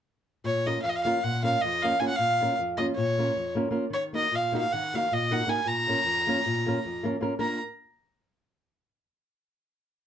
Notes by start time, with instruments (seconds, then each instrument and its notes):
0.44 nylon-string guitar A#2, violin C#5
0.66 nylon-string guitar A#3 C#4 F4 A#4, violin D#5
0.82 nylon-string guitar F2, violin F5
0.89 violin D#5
0.96 violin F5
1.04 nylon-string guitar A#3 C#4 F4 A#4, violin F5
1.23 nylon-string guitar A#2, violin F#5
1.43 nylon-string guitar A#3 C#4 F4 A#4, violin F5
1.62 nylon-string guitar F2, violin D#5
1.82 nylon-string guitar A#3 C#4 F4 A#4, violin F5
2.00 nylon-string guitar A#3 C#4 F4 A#4, violin G#5
2.08 violin F#5
2.16 nylon-string guitar A#2, violin F5
2.41 nylon-string guitar A#3 C#4 F4 A#4
2.59 nylon-string guitar F2
2.77 nylon-string guitar A#3 C#4 F4 A#4, violin D#5
2.95 nylon-string guitar A#2, violin C#5
3.18 nylon-string guitar A#3 C#4 F4 A#4
3.36 nylon-string guitar F2
3.55 nylon-string guitar A#3 C#4 F4 A#4
3.71 nylon-string guitar A#3 C#4 F4 A#4
3.90 nylon-string guitar D#3, violin C#5
4.13 nylon-string guitar A#3 D#4 F#4 A#4, violin D#5
4.31 nylon-string guitar A#2
4.35 violin F5
4.52 nylon-string guitar A#3 D#4 F#4 A#4
4.58 violin F5
4.72 nylon-string guitar D#3, violin F#5
4.94 nylon-string guitar A#3 D#4 F#4 A#4, violin F5
5.12 nylon-string guitar A#2, violin D#5
5.31 nylon-string guitar A#3 D#4 F#4 A#4, violin F#5
5.47 nylon-string guitar A#3 D#4 F#4 A#4, violin G#5
5.66 nylon-string guitar A#2, violin A#5
5.87 nylon-string guitar A#3 C#4 F4 A#4
6.04 nylon-string guitar F2
6.27 nylon-string guitar A#3 C#4 F4 A#4
6.46 nylon-string guitar A#2
6.66 nylon-string guitar A#3 C#4 F4 A#4
6.85 nylon-string guitar F2
7.03 nylon-string guitar A#3 C#4 F4 A#4
7.21 nylon-string guitar A#3 C#4 F4 A#4
7.39 nylon-string guitar A#3 D4 F4 A#4, violin A#5